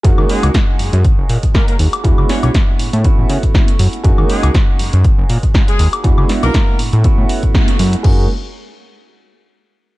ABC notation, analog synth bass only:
X:1
M:4/4
L:1/16
Q:"Swing 16ths" 1/4=120
K:F#
V:1 name="Analog synth bass" clef=bass
F,, D, z C,, z2 F,, F,, F,,, F,,, A,, z3 D,, z | =E,, C, z B,,, z2 =A,, A,, z =A,,, C, z3 F,, z | F,, D, z C,, z2 F,, F,, F,,, F,,, A,, z3 D,, z | =E,, C, z B,,, z2 =A,, A,, z A,, z4 F,, z |
F,,2 z12 z2 |]